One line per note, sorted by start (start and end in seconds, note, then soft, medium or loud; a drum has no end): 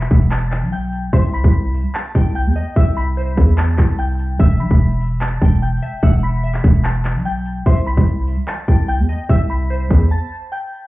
0.00 0.29 E5 medium
0.00 0.28 B5 loud
0.00 0.28 B6 medium
0.00 clap medium
0.11 0.64 E1 loud
0.11 kick loud
0.11 closed hi-hat medium
0.16 closed hi-hat medium
0.22 closed hi-hat medium
0.27 closed hi-hat soft
0.31 0.70 A5 medium
0.31 0.70 A6 medium
0.31 clap loud
0.31 closed hi-hat medium
0.52 clap medium
0.52 closed hi-hat medium
0.59 closed hi-hat medium
0.63 1.10 B1 loud
0.63 closed hi-hat medium
0.72 1.11 G5 medium
0.72 1.11 G6 medium
0.72 closed hi-hat medium
0.93 closed hi-hat medium
1.13 1.43 C2 loud
1.13 1.33 C5 medium
1.13 2.11 E5 loud
1.13 1.32 C6 medium
1.13 kick loud
1.13 closed hi-hat medium
1.34 1.91 B5 medium
1.34 1.91 B6 medium
1.44 1.83 C2 loud
1.44 kick loud
1.54 closed hi-hat medium
1.74 open hi-hat medium
1.95 2.33 A5 medium
1.95 2.33 A6 medium
1.95 clap loud
1.95 closed hi-hat medium
2.15 2.48 C2 loud
2.15 2.53 G5 medium
2.15 kick loud
2.15 closed hi-hat medium
2.35 2.74 G5 medium
2.35 2.74 G6 medium
2.35 closed hi-hat medium
2.46 2.55 E2 loud
2.56 2.75 D#5 medium
2.56 closed hi-hat medium
2.76 3.35 C2 loud
2.76 2.95 E5 medium
2.76 3.15 E5 loud
2.76 2.96 E6 medium
2.76 kick loud
2.76 closed hi-hat medium
2.97 3.54 B5 loud
2.97 3.55 B6 medium
3.17 4.36 C5 loud
3.17 closed hi-hat medium
3.37 3.77 E2 loud
3.37 kick loud
3.37 closed hi-hat medium
3.48 closed hi-hat medium
3.58 3.96 A5 medium
3.58 3.97 A6 medium
3.58 clap loud
3.58 closed hi-hat medium
3.78 4.37 C2 loud
3.78 kick loud
3.78 clap medium
3.78 closed hi-hat medium
3.89 closed hi-hat medium
3.99 4.37 G5 medium
3.99 4.37 G6 medium
3.99 closed hi-hat soft
4.04 closed hi-hat medium
4.10 closed hi-hat soft
4.14 closed hi-hat soft
4.19 closed hi-hat medium
4.40 4.61 E1 loud
4.40 4.59 E5 medium
4.40 5.38 E5 loud
4.40 4.59 E6 medium
4.40 kick loud
4.40 closed hi-hat medium
4.60 4.70 B1 loud
4.60 5.18 B5 medium
4.60 5.18 B6 medium
4.71 5.39 E1 loud
4.71 kick loud
4.80 closed hi-hat medium
5.01 open hi-hat medium
5.21 5.60 A5 medium
5.21 5.60 A6 medium
5.21 clap loud
5.21 closed hi-hat medium
5.42 5.81 E1 loud
5.42 5.80 G5 medium
5.42 kick loud
5.42 closed hi-hat medium
5.62 6.00 G5 medium
5.62 6.01 G6 medium
5.62 closed hi-hat medium
5.82 6.02 E5 medium
5.82 closed hi-hat medium
6.03 6.62 E1 loud
6.03 6.22 E5 loud
6.03 6.41 F#5 loud
6.03 6.23 E6 medium
6.03 kick loud
6.03 closed hi-hat medium
6.23 6.81 B5 medium
6.23 6.81 B6 medium
6.44 6.82 E5 medium
6.44 closed hi-hat medium
6.54 clap medium
6.64 7.17 E1 loud
6.64 kick loud
6.64 closed hi-hat medium
6.69 closed hi-hat medium
6.75 closed hi-hat medium
6.80 closed hi-hat soft
6.84 7.23 A5 medium
6.84 7.23 A6 medium
6.84 clap loud
6.84 closed hi-hat medium
7.05 clap loud
7.05 closed hi-hat soft
7.12 closed hi-hat medium
7.16 7.64 B1 loud
7.16 closed hi-hat medium
7.25 7.64 G5 medium
7.25 7.64 G6 medium
7.25 closed hi-hat medium
7.46 closed hi-hat medium
7.66 7.96 C2 loud
7.66 7.86 C5 medium
7.66 8.64 E5 loud
7.66 7.85 C6 medium
7.66 kick loud
7.66 closed hi-hat medium
7.87 8.44 B5 medium
7.87 8.45 B6 medium
7.97 8.37 C2 loud
7.97 kick loud
8.07 closed hi-hat medium
8.27 open hi-hat medium
8.48 8.86 A5 medium
8.48 8.87 A6 medium
8.48 clap loud
8.48 closed hi-hat medium
8.68 9.01 C2 loud
8.68 9.06 G5 medium
8.68 kick loud
8.68 closed hi-hat medium
8.88 9.27 G5 medium
8.88 9.27 G6 medium
8.88 closed hi-hat medium
8.99 9.08 E2 loud
9.09 9.28 D#5 medium
9.09 closed hi-hat medium
9.29 9.88 C2 loud
9.29 9.68 E5 loud
9.29 9.49 E5 medium
9.29 9.49 E6 medium
9.29 kick loud
9.29 closed hi-hat medium
9.50 10.07 B5 medium
9.50 10.08 B6 medium
9.70 10.87 C5 loud
9.70 closed hi-hat medium
9.91 10.10 E2 loud
9.91 kick loud
9.91 closed hi-hat medium
10.01 closed hi-hat medium
10.11 10.49 A5 medium
10.11 10.50 A6 medium
10.52 10.87 G5 medium
10.52 10.87 G6 medium